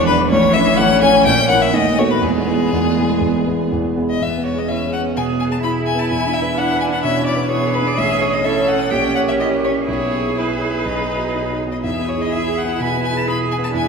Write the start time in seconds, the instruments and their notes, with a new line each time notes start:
Already playing: grand piano E1 E2 D4 E4 B4, cello E3, viola D4
0.07 grand piano D4 E4 B4, violin B4
0.29 grand piano A1 A2, viola C#4, violin C#5
0.53 grand piano C#4 E4 C#5, violin E5
0.77 grand piano A1 A2, violin F#5
1.01 grand piano C#4 E4 C#5, violin G#5
1.25 grand piano A#1 A#2, violin G5
1.49 grand piano C#4 E4 A#4, violin F#5
1.61 violin E5
1.72 grand piano D#2 D#3, cello A3, viola B3, violin D#5
1.98 grand piano B3 F#4 A4, violin C#5
2.10 violin B4
2.22 grand piano E1 E2, cello G#3, violin G#4
2.47 grand piano B3 E4 G#4
2.72 grand piano E1 E2
2.97 grand piano B3 E4 G#4
3.21 grand piano E1 E2
3.47 grand piano B3 E4 G#4
3.72 grand piano E1 E2
3.96 grand piano B3 E4 G#4
4.10 violin D#5
4.21 grand piano E2, viola B3, violin E5
4.38 grand piano B3
4.46 violin C#5
4.54 grand piano G#4, violin D#5
4.68 viola C#4, grand piano E4, violin E5
4.87 grand piano G#4
4.93 violin F#5
5.01 grand piano B3
5.17 grand piano B2, viola B3, cello G#4, violin G#5
5.32 grand piano B3
5.40 violin G#5
5.49 grand piano G#4, violin A5
5.63 grand piano E4, cello E4, viola E4, violin B5
5.80 grand piano G#4
5.86 violin G#5
5.95 grand piano B3
5.99 violin A5
6.09 grand piano E2, violin G#5
6.27 grand piano D4
6.33 violin E5
6.42 grand piano B4
6.58 viola D4, grand piano E4, violin F#5
6.73 grand piano B4
6.80 violin G#5
6.88 grand piano D4, violin F#5
7.03 grand piano B2, viola C#4, violin E5
7.19 grand piano D4
7.26 violin D5
7.36 grand piano B4
7.50 viola B3, grand piano E4, cello G#4, violin C#5
7.67 grand piano B4
7.74 violin B4
7.82 grand piano D4
7.87 violin D5
7.98 grand piano A1, viola C#4, violin E5
8.14 grand piano C#4
8.21 violin C#5
8.30 grand piano C#5, violin D#5
8.44 viola C#4, grand piano E4, cello A4, violin E5
8.60 grand piano C#5
8.68 violin F#5
8.76 grand piano C#4
8.90 grand piano A#1, viola C#4, cello G4, violin G5
9.07 grand piano C#4
9.15 violin F#5
9.23 grand piano A#4
9.28 violin E5
9.39 grand piano E4, violin D#5
9.54 grand piano A#4
9.64 violin C#5
9.70 grand piano C#4
9.87 grand piano B1, viola E4, cello G#4, violin C#5
10.05 grand piano B3
10.20 grand piano G#4
10.36 viola E4, grand piano E4, violin B4
10.54 grand piano G#4
10.70 grand piano B3
10.85 grand piano B1, viola D#4
11.01 grand piano B3
11.17 grand piano F#4
11.33 grand piano D#4
11.50 grand piano F#4
11.67 grand piano B3
11.72 violin D#5
11.83 grand piano E2, viola E4, cello G#4, violin E5
11.99 grand piano B3
12.09 violin C#5
12.16 grand piano G#4
12.21 violin D#5
12.32 grand piano E4, violin E5
12.48 grand piano G#4
12.58 violin F#5
12.64 grand piano B3
12.80 grand piano B2, cello B4, violin G#5
12.96 grand piano B3
13.04 violin G#5
13.12 grand piano G#4
13.16 violin A5
13.27 grand piano E4, cello G#4, violin B5
13.43 grand piano G#4
13.51 violin G#5
13.59 grand piano B3
13.64 violin A5
13.73 grand piano E2, viola D4, cello E4, violin G#5